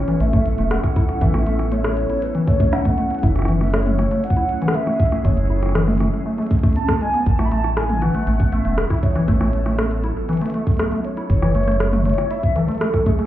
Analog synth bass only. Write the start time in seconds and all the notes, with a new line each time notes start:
0.21 A1
0.58 E1
1.21 A1
3.23 F#1
5.25 F#1
7.26 A1
8.27 A1
8.65 E1
9.28 A1
11.30 F#1